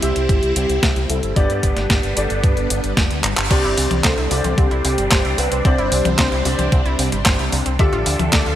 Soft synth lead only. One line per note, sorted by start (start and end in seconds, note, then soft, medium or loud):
0.03 0.52 G4 loud
0.56 1.11 G4 loud
1.10 1.38 A4 loud
1.36 2.16 G4 loud
2.17 2.45 A4 medium
2.44 2.97 B4 medium
3.51 4.06 G4 medium
4.04 4.59 A4 loud
4.58 4.84 G4 medium
4.85 5.40 G4 loud
5.38 5.64 B4 loud
5.65 7.22 C5 loud
7.79 8.34 G4 loud
8.33 8.55 A4 loud